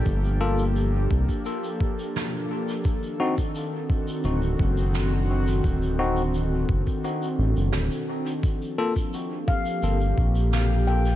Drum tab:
SH |xx-xx--xxx-xx--x|xx-xx--xxx-xx--x|xx-xx--xxx-xxx-x|xx-xx--xxx-xx--x|
SD |------------o---|------------o---|------------o---|------------o---|
BD |o-----oo--o-----|o--o--o---o-----|o-----oo--------|o--o--o---o-----|